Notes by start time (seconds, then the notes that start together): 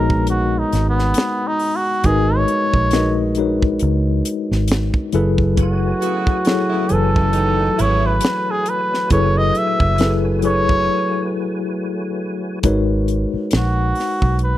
Already playing: A#1 G#3 B3 D#4 F#4 A#4 B4 C#5 D#5
0.10 kick
0.27 F#4, closed hi-hat
0.59 D#4
0.73 G#1, snare, closed hi-hat
0.89 B3
0.99 snare
1.14 snare, closed hi-hat
1.47 D#4
1.59 open hi-hat
1.76 F#4
2.04 G#1 G#3 D#4 F#4 G#4 A#4 B4 D#5, kick, closed hi-hat
2.36 C#5
2.48 closed hi-hat
2.74 A#1, kick
2.91 G#3 D#4 F#4 A#4, snare, closed hi-hat
2.95 B4 D#5
3.35 G#3 D#4 F#4, closed hi-hat
3.39 A#4 B4 C#5
3.62 kick
3.79 C#2, closed hi-hat
4.25 closed hi-hat
4.51 G#1, snare
4.68 snare, closed hi-hat
4.94 kick
5.12 F#1 F#3 E4 G#4 A4 B4, closed hi-hat
5.38 kick
5.57 F#3 A3 F#4 B4 G#5, kick, closed hi-hat
5.62 F#4
6.02 C#3 B3 F#4, closed hi-hat
6.27 kick
6.45 F#3 E4 G#4 A4 C#5, snare, closed hi-hat
6.70 C#3 B3 E4
6.89 F#1 E3 F#3 A4 B4 G#5, closed hi-hat
6.93 A4
7.14 A2 G#3 C#4, kick
7.33 D#3 B3 D#4, closed hi-hat
7.78 G#1 C#3 B3 E4 C#5, closed hi-hat
8.06 B4
8.21 snare, closed hi-hat
8.51 G#4
8.66 B4, closed hi-hat
8.94 snare
9.10 F#1 F#3 E4 G#4 A4 B4 C#5, kick, closed hi-hat
9.37 D#5
9.55 E5, closed hi-hat
9.80 F#1, kick
9.98 F#3 E4 G#4 A4 B4, snare, closed hi-hat
10.42 F#3 E4 G#4 A4 B4 C#5, closed hi-hat
10.69 kick
12.63 G#1 G#3 D#4 F#4 A#4 B4 C#5, kick, closed hi-hat
13.08 closed hi-hat
13.34 muted fingered electric bass stroke
13.51 A#1, snare, closed hi-hat
13.56 F#4
13.95 open hi-hat
13.99 snare
14.22 B1, kick
14.39 closed hi-hat
14.44 B4